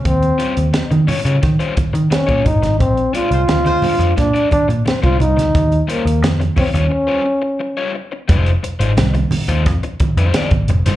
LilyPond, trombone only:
\new Staff \with { instrumentName = "Trombone" } { \time 4/4 \key ees \major \tempo 4 = 88 c'4 r2 des'8 ees'8 | c'8 f'4. d'8 d'8 c'16 f'16 ees'8~ | ees'8 bes8 r8 c'16 des'4.~ des'16 r8 | r1 | }